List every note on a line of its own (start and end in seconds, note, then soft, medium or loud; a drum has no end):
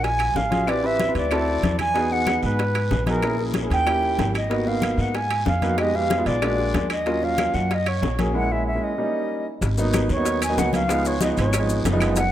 0.00 0.32 A#1 medium
0.00 0.38 G#5 loud
0.00 high conga soft
0.04 high bongo medium
0.04 high timbale medium
0.04 long guiro medium
0.19 high bongo soft
0.19 high conga soft
0.19 high timbale medium
0.19 claves medium
0.35 1.10 A1 medium
0.35 0.70 F5 medium
0.35 high bongo soft
0.35 low bongo medium
0.35 high conga soft
0.35 low timbale medium
0.35 short guiro medium
0.50 0.62 C#4 medium
0.50 0.62 F4 medium
0.50 0.62 F#4 medium
0.50 0.63 G#4 medium
0.50 high bongo soft
0.50 high conga medium
0.50 high timbale medium
0.50 short guiro medium
0.66 0.78 C4 medium
0.66 0.78 E4 medium
0.66 0.79 G4 medium
0.66 0.79 B4 medium
0.66 0.88 D5 loud
0.66 high bongo medium
0.66 high conga soft
0.66 high timbale medium
0.66 long guiro medium
0.66 claves medium
0.83 1.00 C4 medium
0.83 1.00 E4 medium
0.83 1.00 G4 soft
0.83 1.01 B4 medium
0.83 1.17 E5 loud
0.83 high bongo soft
0.83 high conga soft
1.00 high bongo soft
1.00 high conga medium
1.00 high timbale medium
1.00 short guiro medium
1.07 1.24 C4 medium
1.07 1.24 E4 medium
1.07 1.25 G4 medium
1.07 1.25 B4 medium
1.15 1.60 D2 medium
1.15 1.76 D5 medium
1.15 high conga soft
1.15 high timbale medium
1.15 short guiro medium
1.31 1.76 C4 medium
1.31 1.76 E4 medium
1.31 1.77 F#4 medium
1.31 1.77 A4 medium
1.31 high bongo medium
1.31 high conga soft
1.31 high timbale medium
1.31 long guiro medium
1.31 claves medium
1.48 high bongo soft
1.48 high conga soft
1.63 2.37 E2 medium
1.63 high bongo soft
1.63 low bongo medium
1.63 high conga medium
1.63 high timbale medium
1.63 short guiro medium
1.79 2.14 G#5 loud
1.79 high bongo soft
1.79 high conga medium
1.79 high timbale medium
1.79 short guiro medium
1.79 claves medium
1.94 2.06 B3 medium
1.94 2.06 D#4 medium
1.94 2.06 F#4 medium
1.94 2.07 G#4 medium
1.94 high bongo medium
1.94 high conga soft
1.94 high timbale medium
1.94 long guiro medium
2.11 2.56 B3 medium
2.11 2.56 D#4 medium
2.11 2.56 G#4 medium
2.11 2.44 F#5 loud
2.11 high bongo soft
2.11 high conga soft
2.26 high bongo medium
2.26 high conga medium
2.26 high timbale medium
2.26 short guiro medium
2.26 claves medium
2.43 2.88 G#2 medium
2.43 3.04 B4 medium
2.43 high conga soft
2.43 short guiro medium
2.59 high bongo medium
2.59 high conga soft
2.59 high timbale medium
2.59 long guiro medium
2.74 high bongo soft
2.74 high conga soft
2.74 high timbale medium
2.74 claves medium
2.91 3.65 A#1 medium
2.91 high bongo soft
2.91 low bongo medium
2.91 high conga soft
2.91 low timbale medium
2.91 short guiro medium
3.06 3.18 B3 medium
3.06 3.18 D#4 medium
3.06 3.18 F#4 medium
3.06 3.19 G#4 medium
3.06 3.43 A#4 medium
3.06 high bongo soft
3.06 high conga medium
3.06 high timbale medium
3.06 short guiro medium
3.22 3.34 A#3 medium
3.22 3.34 C#4 medium
3.22 3.34 E4 medium
3.22 3.35 G#4 medium
3.22 high bongo medium
3.22 high conga soft
3.22 high timbale medium
3.22 long guiro medium
3.22 claves medium
3.38 3.55 A#3 medium
3.38 3.56 C#4 soft
3.38 3.56 G#4 medium
3.38 high bongo soft
3.38 high conga soft
3.54 high bongo soft
3.54 high conga medium
3.54 high timbale medium
3.54 short guiro medium
3.63 3.80 A#3 medium
3.63 3.80 C#4 medium
3.63 3.80 E4 medium
3.63 3.80 G#4 medium
3.70 4.15 D#2 loud
3.70 4.32 G5 loud
3.70 high conga soft
3.70 high timbale medium
3.70 short guiro medium
3.86 4.31 A#3 medium
3.86 4.32 C#4 medium
3.86 4.32 E4 medium
3.86 4.32 G4 medium
3.86 high bongo medium
3.86 high conga soft
3.86 high timbale medium
3.86 long guiro medium
3.86 claves medium
4.03 high bongo soft
4.03 high conga soft
4.18 4.93 G#1 medium
4.18 high bongo soft
4.18 low bongo medium
4.18 high conga medium
4.18 high timbale medium
4.18 low timbale medium
4.18 short guiro medium
4.35 4.69 D#5 medium
4.35 high bongo soft
4.35 high timbale medium
4.35 short guiro medium
4.35 claves medium
4.50 4.62 A#3 medium
4.50 4.62 B3 medium
4.50 4.62 D#4 medium
4.50 4.62 F#4 medium
4.50 high bongo medium
4.50 high conga soft
4.50 high timbale medium
4.50 long guiro medium
4.65 5.11 A#3 medium
4.65 5.11 B3 medium
4.65 5.11 D#4 medium
4.65 5.12 F#4 medium
4.65 5.03 F5 medium
4.65 high bongo soft
4.65 high conga soft
4.82 high bongo soft
4.82 high conga medium
4.82 high timbale medium
4.82 short guiro medium
4.82 claves medium
4.98 5.43 G#2 medium
4.98 5.17 F#5 medium
4.98 high conga soft
4.98 short guiro medium
5.14 5.47 G#5 medium
5.14 high bongo medium
5.14 high conga soft
5.14 high timbale medium
5.14 long guiro medium
5.30 high bongo soft
5.30 high conga soft
5.30 high timbale medium
5.30 claves medium
5.46 6.21 F2 medium
5.46 5.77 F5 medium
5.46 high bongo soft
5.46 low bongo medium
5.46 high conga soft
5.46 low timbale medium
5.46 short guiro medium
5.62 5.74 A#3 medium
5.62 5.74 B3 medium
5.62 5.74 D#4 medium
5.62 5.74 F#4 medium
5.62 high bongo soft
5.62 high conga medium
5.62 high timbale medium
5.62 short guiro medium
5.77 5.89 G#3 medium
5.77 5.89 B3 medium
5.77 5.89 D#4 medium
5.77 5.90 G4 medium
5.77 5.97 D#5 medium
5.77 high bongo medium
5.77 high conga soft
5.77 high timbale medium
5.77 long guiro medium
5.77 claves medium
5.93 6.11 G#3 medium
5.93 6.11 B3 medium
5.93 6.11 D#4 medium
5.93 6.12 G4 medium
5.93 6.28 F5 loud
5.93 high bongo soft
5.93 high conga soft
6.10 high bongo soft
6.10 high conga medium
6.10 high timbale medium
6.10 short guiro medium
6.17 6.35 G#3 medium
6.17 6.35 B3 medium
6.17 6.35 D#4 medium
6.17 6.35 F4 medium
6.26 6.71 A#1 medium
6.26 6.91 D5 medium
6.26 high conga soft
6.26 high timbale medium
6.26 short guiro medium
6.42 6.87 G#3 medium
6.42 6.87 A#3 medium
6.42 6.87 D4 medium
6.42 6.87 F#4 medium
6.42 high bongo medium
6.42 high conga soft
6.42 high timbale medium
6.42 long guiro medium
6.42 claves medium
6.58 high bongo soft
6.58 high conga soft
6.74 7.49 D#2 medium
6.74 high bongo soft
6.74 low bongo medium
6.74 high conga medium
6.74 high timbale medium
6.74 low timbale medium
6.74 short guiro medium
6.90 7.26 D#5 medium
6.90 high bongo soft
6.90 high timbale medium
6.90 short guiro medium
6.90 claves medium
7.06 7.17 F#3 medium
7.06 7.18 A#3 medium
7.06 7.18 C#4 medium
7.06 7.18 F4 medium
7.06 high bongo medium
7.06 high conga soft
7.06 high timbale medium
7.06 long guiro medium
7.22 7.67 F#3 medium
7.22 7.67 A#3 soft
7.22 7.67 C#4 medium
7.22 7.67 F4 medium
7.22 7.56 F5 loud
7.22 high bongo soft
7.22 high conga soft
7.38 high bongo medium
7.38 high conga medium
7.38 high timbale medium
7.38 short guiro medium
7.38 claves medium
7.54 7.99 F#2 medium
7.54 7.75 F#5 medium
7.54 high conga soft
7.54 short guiro medium
7.71 7.90 D#5 loud
7.71 high bongo medium
7.71 high conga soft
7.71 high timbale medium
7.71 long guiro medium
7.86 8.19 C#5 medium
7.86 high bongo soft
7.86 high conga soft
7.86 high timbale medium
7.86 claves medium
8.02 8.76 A#1 medium
8.02 high bongo soft
8.02 low bongo medium
8.02 high conga soft
8.02 low timbale medium
8.02 short guiro medium
8.18 8.29 F#3 medium
8.18 8.30 A#3 medium
8.18 8.30 C#4 medium
8.18 8.30 G#4 medium
8.18 high bongo soft
8.18 high conga medium
8.18 high timbale medium
8.18 short guiro medium
8.34 8.45 G#3 medium
8.34 8.45 A#3 medium
8.34 8.46 C#4 medium
8.34 8.46 E4 medium
8.34 8.53 F#5 medium
8.50 8.67 G#3 medium
8.50 8.67 A#3 medium
8.50 8.68 C#4 medium
8.50 8.68 E4 medium
8.50 8.67 E5 medium
8.67 8.85 E5 medium
8.75 8.91 G#3 medium
8.75 8.91 A#3 medium
8.75 8.91 C#4 medium
8.75 8.92 E4 medium
8.84 9.47 D#5 medium
8.98 9.43 G3 medium
8.98 9.43 A#3 medium
8.98 9.43 C#4 medium
8.98 9.43 D#4 medium
9.61 10.06 G#1 loud
9.61 high bongo medium
9.61 high conga soft
9.61 high timbale medium
9.61 long guiro medium
9.61 maracas medium
9.78 10.06 F#3 medium
9.78 10.06 A#3 medium
9.78 10.06 B3 medium
9.78 10.06 D#4 medium
9.78 high bongo soft
9.78 high conga soft
9.78 maracas medium
9.93 high bongo medium
9.93 high conga medium
9.93 high timbale medium
9.93 short guiro medium
9.93 claves medium
9.93 maracas medium
10.09 10.54 D#2 loud
10.09 10.40 C#5 medium
10.09 high conga soft
10.09 short guiro medium
10.09 maracas soft
10.16 10.39 F#3 medium
10.16 10.40 A#3 medium
10.16 10.40 B3 medium
10.16 10.40 D#4 medium
10.25 high bongo medium
10.25 high conga soft
10.25 high timbale medium
10.25 long guiro medium
10.25 maracas medium
10.41 10.60 G#5 loud
10.41 high bongo soft
10.41 high conga soft
10.41 high timbale loud
10.41 claves medium
10.41 maracas medium
10.49 10.77 F#3 medium
10.49 10.77 A#3 medium
10.49 10.77 B3 medium
10.49 10.77 D#4 medium
10.57 11.32 C#2 medium
10.57 10.74 F#5 medium
10.57 high bongo soft
10.57 low bongo medium
10.57 high conga soft
10.57 low timbale medium
10.57 short guiro medium
10.57 maracas medium
10.73 11.09 F5 loud
10.73 high bongo soft
10.73 high conga medium
10.73 high timbale medium
10.73 short guiro medium
10.73 maracas soft
10.88 11.11 F3 medium
10.88 11.11 G#3 medium
10.88 11.11 B3 medium
10.88 11.11 D#4 medium
10.88 high bongo medium
10.88 high conga soft
10.88 high timbale medium
10.88 long guiro medium
10.88 claves medium
10.88 maracas medium
11.04 11.22 C#5 medium
11.04 high bongo soft
11.04 high conga soft
11.04 maracas medium
11.19 11.48 F3 medium
11.19 11.49 G#3 medium
11.19 11.49 B3 medium
11.19 11.49 D#4 medium
11.19 high bongo medium
11.19 high conga medium
11.19 high timbale medium
11.19 short guiro medium
11.19 maracas medium
11.24 11.30 D#5 medium
11.37 11.82 G#1 loud
11.37 11.82 C#5 medium
11.37 high conga soft
11.37 high timbale medium
11.37 short guiro medium
11.37 maracas soft
11.53 high bongo medium
11.53 high conga soft
11.53 high timbale loud
11.53 long guiro medium
11.53 claves medium
11.53 maracas medium
11.59 11.83 F3 medium
11.59 11.83 G#3 medium
11.59 11.83 B3 medium
11.59 11.83 D#4 medium
11.69 high bongo soft
11.69 high conga soft
11.69 maracas medium
11.85 12.32 F#1 medium
11.85 high bongo soft
11.85 low bongo medium
11.85 high conga medium
11.85 high timbale medium
11.85 low timbale medium
11.85 short guiro medium
11.85 maracas medium
11.92 12.16 F3 medium
11.92 12.17 G#3 medium
11.92 12.17 B3 medium
11.92 12.17 D#4 medium
12.00 high bongo soft
12.00 high timbale medium
12.00 short guiro medium
12.00 claves medium
12.00 maracas soft
12.16 12.32 F#5 loud
12.16 high bongo medium
12.16 high conga soft
12.16 high timbale medium
12.16 long guiro medium
12.16 maracas medium